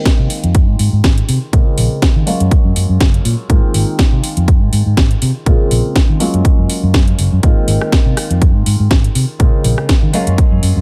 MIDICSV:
0, 0, Header, 1, 4, 480
1, 0, Start_track
1, 0, Tempo, 491803
1, 1494, Time_signature, 4, 2, 24, 8
1, 10553, End_track
2, 0, Start_track
2, 0, Title_t, "Grand piano"
2, 0, Program_c, 0, 0
2, 0, Note_on_c, 0, 51, 88
2, 0, Note_on_c, 0, 56, 83
2, 0, Note_on_c, 0, 58, 84
2, 0, Note_on_c, 0, 60, 82
2, 0, Note_on_c, 0, 65, 98
2, 1448, Note_off_c, 0, 51, 0
2, 1450, Note_off_c, 0, 56, 0
2, 1452, Note_off_c, 0, 58, 0
2, 1454, Note_off_c, 0, 60, 0
2, 1456, Note_off_c, 0, 65, 0
2, 1488, Note_on_c, 0, 49, 78
2, 1492, Note_on_c, 0, 56, 72
2, 1497, Note_on_c, 0, 58, 75
2, 1501, Note_on_c, 0, 60, 72
2, 1504, Note_on_c, 0, 65, 87
2, 2168, Note_off_c, 0, 49, 0
2, 2170, Note_off_c, 0, 56, 0
2, 2172, Note_off_c, 0, 58, 0
2, 2174, Note_off_c, 0, 60, 0
2, 2176, Note_off_c, 0, 65, 0
2, 2207, Note_on_c, 0, 54, 89
2, 2212, Note_on_c, 0, 56, 79
2, 2215, Note_on_c, 0, 58, 82
2, 2219, Note_on_c, 0, 61, 80
2, 2223, Note_on_c, 0, 65, 100
2, 3368, Note_off_c, 0, 54, 0
2, 3370, Note_off_c, 0, 56, 0
2, 3371, Note_off_c, 0, 58, 0
2, 3373, Note_off_c, 0, 61, 0
2, 3375, Note_off_c, 0, 65, 0
2, 3407, Note_on_c, 0, 51, 94
2, 3410, Note_on_c, 0, 56, 84
2, 3414, Note_on_c, 0, 58, 87
2, 3419, Note_on_c, 0, 60, 84
2, 3423, Note_on_c, 0, 65, 105
2, 5287, Note_off_c, 0, 51, 0
2, 5289, Note_off_c, 0, 56, 0
2, 5291, Note_off_c, 0, 58, 0
2, 5294, Note_off_c, 0, 60, 0
2, 5295, Note_off_c, 0, 65, 0
2, 5327, Note_on_c, 0, 49, 78
2, 5330, Note_on_c, 0, 56, 76
2, 5334, Note_on_c, 0, 58, 74
2, 5338, Note_on_c, 0, 60, 73
2, 5341, Note_on_c, 0, 65, 88
2, 6007, Note_off_c, 0, 49, 0
2, 6009, Note_off_c, 0, 56, 0
2, 6011, Note_off_c, 0, 58, 0
2, 6013, Note_off_c, 0, 60, 0
2, 6015, Note_off_c, 0, 65, 0
2, 6047, Note_on_c, 0, 54, 86
2, 6051, Note_on_c, 0, 56, 82
2, 6055, Note_on_c, 0, 58, 84
2, 6059, Note_on_c, 0, 61, 81
2, 6063, Note_on_c, 0, 65, 97
2, 7207, Note_off_c, 0, 54, 0
2, 7209, Note_off_c, 0, 56, 0
2, 7212, Note_off_c, 0, 58, 0
2, 7213, Note_off_c, 0, 61, 0
2, 7215, Note_off_c, 0, 65, 0
2, 7247, Note_on_c, 0, 51, 92
2, 7251, Note_on_c, 0, 56, 85
2, 7255, Note_on_c, 0, 58, 82
2, 7258, Note_on_c, 0, 60, 82
2, 7263, Note_on_c, 0, 65, 103
2, 9127, Note_off_c, 0, 51, 0
2, 9129, Note_off_c, 0, 56, 0
2, 9131, Note_off_c, 0, 58, 0
2, 9133, Note_off_c, 0, 60, 0
2, 9136, Note_off_c, 0, 65, 0
2, 9166, Note_on_c, 0, 49, 81
2, 9170, Note_on_c, 0, 56, 73
2, 9173, Note_on_c, 0, 58, 75
2, 9178, Note_on_c, 0, 60, 72
2, 9183, Note_on_c, 0, 65, 89
2, 9847, Note_off_c, 0, 49, 0
2, 9849, Note_off_c, 0, 56, 0
2, 9850, Note_off_c, 0, 58, 0
2, 9853, Note_off_c, 0, 60, 0
2, 9855, Note_off_c, 0, 65, 0
2, 9887, Note_on_c, 0, 54, 93
2, 9892, Note_on_c, 0, 56, 85
2, 9895, Note_on_c, 0, 58, 82
2, 9899, Note_on_c, 0, 61, 83
2, 9904, Note_on_c, 0, 65, 102
2, 10553, Note_off_c, 0, 54, 0
2, 10553, Note_off_c, 0, 56, 0
2, 10553, Note_off_c, 0, 58, 0
2, 10553, Note_off_c, 0, 61, 0
2, 10553, Note_off_c, 0, 65, 0
2, 10553, End_track
3, 0, Start_track
3, 0, Title_t, "Fingered electric bass"
3, 0, Program_c, 1, 33
3, 187, Note_on_c, 1, 48, 87
3, 255, Note_off_c, 1, 48, 0
3, 427, Note_on_c, 1, 41, 88
3, 664, Note_off_c, 1, 41, 0
3, 664, Note_on_c, 1, 44, 92
3, 733, Note_off_c, 1, 44, 0
3, 773, Note_on_c, 1, 44, 84
3, 857, Note_off_c, 1, 44, 0
3, 904, Note_on_c, 1, 44, 90
3, 973, Note_off_c, 1, 44, 0
3, 1015, Note_on_c, 1, 32, 99
3, 1174, Note_off_c, 1, 32, 0
3, 1255, Note_on_c, 1, 48, 88
3, 1337, Note_off_c, 1, 48, 0
3, 1494, Note_on_c, 1, 46, 97
3, 1577, Note_off_c, 1, 46, 0
3, 1736, Note_on_c, 1, 34, 94
3, 1818, Note_off_c, 1, 34, 0
3, 2106, Note_on_c, 1, 51, 87
3, 2174, Note_off_c, 1, 51, 0
3, 2346, Note_on_c, 1, 42, 90
3, 2414, Note_off_c, 1, 42, 0
3, 2586, Note_on_c, 1, 42, 91
3, 2654, Note_off_c, 1, 42, 0
3, 2693, Note_on_c, 1, 42, 84
3, 2776, Note_off_c, 1, 42, 0
3, 2823, Note_on_c, 1, 42, 93
3, 2892, Note_off_c, 1, 42, 0
3, 2934, Note_on_c, 1, 30, 97
3, 3093, Note_off_c, 1, 30, 0
3, 3174, Note_on_c, 1, 46, 88
3, 3257, Note_off_c, 1, 46, 0
3, 3412, Note_on_c, 1, 44, 95
3, 3496, Note_off_c, 1, 44, 0
3, 3654, Note_on_c, 1, 32, 96
3, 3737, Note_off_c, 1, 32, 0
3, 4025, Note_on_c, 1, 48, 90
3, 4094, Note_off_c, 1, 48, 0
3, 4265, Note_on_c, 1, 41, 92
3, 4505, Note_off_c, 1, 41, 0
3, 4505, Note_on_c, 1, 44, 92
3, 4574, Note_off_c, 1, 44, 0
3, 4613, Note_on_c, 1, 44, 84
3, 4697, Note_off_c, 1, 44, 0
3, 4744, Note_on_c, 1, 44, 89
3, 4813, Note_off_c, 1, 44, 0
3, 4853, Note_on_c, 1, 32, 98
3, 5013, Note_off_c, 1, 32, 0
3, 5096, Note_on_c, 1, 48, 90
3, 5178, Note_off_c, 1, 48, 0
3, 5332, Note_on_c, 1, 46, 93
3, 5416, Note_off_c, 1, 46, 0
3, 5573, Note_on_c, 1, 34, 98
3, 5656, Note_off_c, 1, 34, 0
3, 5948, Note_on_c, 1, 51, 90
3, 6015, Note_off_c, 1, 51, 0
3, 6186, Note_on_c, 1, 42, 93
3, 6254, Note_off_c, 1, 42, 0
3, 6428, Note_on_c, 1, 42, 93
3, 6495, Note_off_c, 1, 42, 0
3, 6668, Note_on_c, 1, 42, 101
3, 6951, Note_off_c, 1, 42, 0
3, 7016, Note_on_c, 1, 30, 93
3, 7098, Note_off_c, 1, 30, 0
3, 7148, Note_on_c, 1, 42, 90
3, 7215, Note_off_c, 1, 42, 0
3, 7255, Note_on_c, 1, 44, 94
3, 7337, Note_off_c, 1, 44, 0
3, 7492, Note_on_c, 1, 32, 94
3, 7576, Note_off_c, 1, 32, 0
3, 7865, Note_on_c, 1, 48, 87
3, 7934, Note_off_c, 1, 48, 0
3, 8104, Note_on_c, 1, 41, 88
3, 8346, Note_off_c, 1, 41, 0
3, 8346, Note_on_c, 1, 44, 94
3, 8414, Note_off_c, 1, 44, 0
3, 8456, Note_on_c, 1, 44, 84
3, 8538, Note_off_c, 1, 44, 0
3, 8585, Note_on_c, 1, 44, 91
3, 8654, Note_off_c, 1, 44, 0
3, 8693, Note_on_c, 1, 32, 98
3, 8853, Note_off_c, 1, 32, 0
3, 8932, Note_on_c, 1, 48, 86
3, 9016, Note_off_c, 1, 48, 0
3, 9173, Note_on_c, 1, 46, 96
3, 9256, Note_off_c, 1, 46, 0
3, 9413, Note_on_c, 1, 34, 100
3, 9496, Note_off_c, 1, 34, 0
3, 9786, Note_on_c, 1, 51, 90
3, 9854, Note_off_c, 1, 51, 0
3, 10025, Note_on_c, 1, 42, 89
3, 10094, Note_off_c, 1, 42, 0
3, 10264, Note_on_c, 1, 42, 95
3, 10333, Note_off_c, 1, 42, 0
3, 10372, Note_on_c, 1, 42, 85
3, 10456, Note_off_c, 1, 42, 0
3, 10506, Note_on_c, 1, 42, 96
3, 10553, Note_off_c, 1, 42, 0
3, 10553, End_track
4, 0, Start_track
4, 0, Title_t, "Drums"
4, 54, Note_on_c, 9, 36, 113
4, 54, Note_on_c, 9, 42, 80
4, 58, Note_on_c, 9, 38, 125
4, 151, Note_off_c, 9, 36, 0
4, 152, Note_off_c, 9, 42, 0
4, 156, Note_off_c, 9, 38, 0
4, 293, Note_on_c, 9, 46, 101
4, 391, Note_off_c, 9, 46, 0
4, 426, Note_on_c, 9, 42, 52
4, 524, Note_off_c, 9, 42, 0
4, 533, Note_on_c, 9, 42, 79
4, 534, Note_on_c, 9, 36, 120
4, 630, Note_off_c, 9, 42, 0
4, 632, Note_off_c, 9, 36, 0
4, 774, Note_on_c, 9, 46, 103
4, 871, Note_off_c, 9, 46, 0
4, 1015, Note_on_c, 9, 36, 118
4, 1015, Note_on_c, 9, 42, 81
4, 1019, Note_on_c, 9, 38, 116
4, 1112, Note_off_c, 9, 36, 0
4, 1113, Note_off_c, 9, 42, 0
4, 1117, Note_off_c, 9, 38, 0
4, 1148, Note_on_c, 9, 42, 52
4, 1246, Note_off_c, 9, 42, 0
4, 1255, Note_on_c, 9, 46, 99
4, 1353, Note_off_c, 9, 46, 0
4, 1495, Note_on_c, 9, 36, 121
4, 1495, Note_on_c, 9, 42, 79
4, 1592, Note_off_c, 9, 36, 0
4, 1593, Note_off_c, 9, 42, 0
4, 1733, Note_on_c, 9, 46, 106
4, 1831, Note_off_c, 9, 46, 0
4, 1974, Note_on_c, 9, 36, 123
4, 1974, Note_on_c, 9, 42, 80
4, 1978, Note_on_c, 9, 38, 122
4, 2072, Note_off_c, 9, 36, 0
4, 2072, Note_off_c, 9, 42, 0
4, 2075, Note_off_c, 9, 38, 0
4, 2215, Note_on_c, 9, 46, 103
4, 2312, Note_off_c, 9, 46, 0
4, 2346, Note_on_c, 9, 42, 52
4, 2444, Note_off_c, 9, 42, 0
4, 2454, Note_on_c, 9, 36, 125
4, 2455, Note_on_c, 9, 42, 77
4, 2551, Note_off_c, 9, 36, 0
4, 2553, Note_off_c, 9, 42, 0
4, 2694, Note_on_c, 9, 46, 108
4, 2792, Note_off_c, 9, 46, 0
4, 2933, Note_on_c, 9, 36, 123
4, 2933, Note_on_c, 9, 42, 78
4, 2937, Note_on_c, 9, 38, 121
4, 3031, Note_off_c, 9, 36, 0
4, 3031, Note_off_c, 9, 42, 0
4, 3034, Note_off_c, 9, 38, 0
4, 3066, Note_on_c, 9, 42, 52
4, 3164, Note_off_c, 9, 42, 0
4, 3174, Note_on_c, 9, 46, 102
4, 3272, Note_off_c, 9, 46, 0
4, 3413, Note_on_c, 9, 36, 121
4, 3414, Note_on_c, 9, 42, 74
4, 3510, Note_off_c, 9, 36, 0
4, 3512, Note_off_c, 9, 42, 0
4, 3653, Note_on_c, 9, 46, 109
4, 3751, Note_off_c, 9, 46, 0
4, 3892, Note_on_c, 9, 36, 123
4, 3894, Note_on_c, 9, 42, 77
4, 3897, Note_on_c, 9, 38, 122
4, 3990, Note_off_c, 9, 36, 0
4, 3991, Note_off_c, 9, 42, 0
4, 3995, Note_off_c, 9, 38, 0
4, 4134, Note_on_c, 9, 46, 107
4, 4232, Note_off_c, 9, 46, 0
4, 4264, Note_on_c, 9, 42, 51
4, 4362, Note_off_c, 9, 42, 0
4, 4372, Note_on_c, 9, 36, 124
4, 4374, Note_on_c, 9, 42, 74
4, 4470, Note_off_c, 9, 36, 0
4, 4471, Note_off_c, 9, 42, 0
4, 4613, Note_on_c, 9, 46, 107
4, 4711, Note_off_c, 9, 46, 0
4, 4853, Note_on_c, 9, 36, 126
4, 4854, Note_on_c, 9, 42, 75
4, 4858, Note_on_c, 9, 38, 118
4, 4950, Note_off_c, 9, 36, 0
4, 4951, Note_off_c, 9, 42, 0
4, 4955, Note_off_c, 9, 38, 0
4, 4985, Note_on_c, 9, 42, 50
4, 5082, Note_off_c, 9, 42, 0
4, 5093, Note_on_c, 9, 46, 110
4, 5190, Note_off_c, 9, 46, 0
4, 5333, Note_on_c, 9, 36, 118
4, 5333, Note_on_c, 9, 42, 72
4, 5430, Note_off_c, 9, 36, 0
4, 5430, Note_off_c, 9, 42, 0
4, 5574, Note_on_c, 9, 46, 107
4, 5671, Note_off_c, 9, 46, 0
4, 5813, Note_on_c, 9, 36, 119
4, 5813, Note_on_c, 9, 42, 73
4, 5817, Note_on_c, 9, 38, 117
4, 5911, Note_off_c, 9, 36, 0
4, 5911, Note_off_c, 9, 42, 0
4, 5914, Note_off_c, 9, 38, 0
4, 6054, Note_on_c, 9, 46, 107
4, 6151, Note_off_c, 9, 46, 0
4, 6186, Note_on_c, 9, 42, 50
4, 6284, Note_off_c, 9, 42, 0
4, 6294, Note_on_c, 9, 36, 124
4, 6295, Note_on_c, 9, 42, 73
4, 6391, Note_off_c, 9, 36, 0
4, 6393, Note_off_c, 9, 42, 0
4, 6534, Note_on_c, 9, 46, 106
4, 6632, Note_off_c, 9, 46, 0
4, 6774, Note_on_c, 9, 36, 125
4, 6774, Note_on_c, 9, 42, 73
4, 6777, Note_on_c, 9, 38, 116
4, 6871, Note_off_c, 9, 42, 0
4, 6872, Note_off_c, 9, 36, 0
4, 6875, Note_off_c, 9, 38, 0
4, 6906, Note_on_c, 9, 42, 47
4, 7003, Note_off_c, 9, 42, 0
4, 7013, Note_on_c, 9, 46, 104
4, 7111, Note_off_c, 9, 46, 0
4, 7253, Note_on_c, 9, 42, 73
4, 7254, Note_on_c, 9, 36, 118
4, 7351, Note_off_c, 9, 42, 0
4, 7352, Note_off_c, 9, 36, 0
4, 7494, Note_on_c, 9, 46, 104
4, 7591, Note_off_c, 9, 46, 0
4, 7627, Note_on_c, 9, 37, 67
4, 7724, Note_off_c, 9, 37, 0
4, 7734, Note_on_c, 9, 36, 115
4, 7735, Note_on_c, 9, 42, 74
4, 7739, Note_on_c, 9, 38, 112
4, 7832, Note_off_c, 9, 36, 0
4, 7833, Note_off_c, 9, 42, 0
4, 7836, Note_off_c, 9, 38, 0
4, 7975, Note_on_c, 9, 37, 65
4, 7975, Note_on_c, 9, 46, 104
4, 8073, Note_off_c, 9, 37, 0
4, 8073, Note_off_c, 9, 46, 0
4, 8106, Note_on_c, 9, 42, 50
4, 8204, Note_off_c, 9, 42, 0
4, 8214, Note_on_c, 9, 36, 116
4, 8214, Note_on_c, 9, 42, 76
4, 8312, Note_off_c, 9, 36, 0
4, 8312, Note_off_c, 9, 42, 0
4, 8454, Note_on_c, 9, 46, 106
4, 8552, Note_off_c, 9, 46, 0
4, 8693, Note_on_c, 9, 36, 122
4, 8694, Note_on_c, 9, 42, 74
4, 8698, Note_on_c, 9, 38, 108
4, 8791, Note_off_c, 9, 36, 0
4, 8791, Note_off_c, 9, 42, 0
4, 8795, Note_off_c, 9, 38, 0
4, 8826, Note_on_c, 9, 42, 50
4, 8924, Note_off_c, 9, 42, 0
4, 8934, Note_on_c, 9, 46, 102
4, 9031, Note_off_c, 9, 46, 0
4, 9172, Note_on_c, 9, 42, 77
4, 9173, Note_on_c, 9, 36, 113
4, 9270, Note_off_c, 9, 36, 0
4, 9270, Note_off_c, 9, 42, 0
4, 9413, Note_on_c, 9, 46, 98
4, 9511, Note_off_c, 9, 46, 0
4, 9544, Note_on_c, 9, 37, 65
4, 9641, Note_off_c, 9, 37, 0
4, 9652, Note_on_c, 9, 42, 79
4, 9653, Note_on_c, 9, 36, 111
4, 9656, Note_on_c, 9, 38, 115
4, 9750, Note_off_c, 9, 36, 0
4, 9750, Note_off_c, 9, 42, 0
4, 9754, Note_off_c, 9, 38, 0
4, 9892, Note_on_c, 9, 46, 98
4, 9990, Note_off_c, 9, 46, 0
4, 10024, Note_on_c, 9, 42, 53
4, 10122, Note_off_c, 9, 42, 0
4, 10133, Note_on_c, 9, 36, 115
4, 10133, Note_on_c, 9, 42, 76
4, 10230, Note_off_c, 9, 36, 0
4, 10231, Note_off_c, 9, 42, 0
4, 10373, Note_on_c, 9, 46, 100
4, 10471, Note_off_c, 9, 46, 0
4, 10553, End_track
0, 0, End_of_file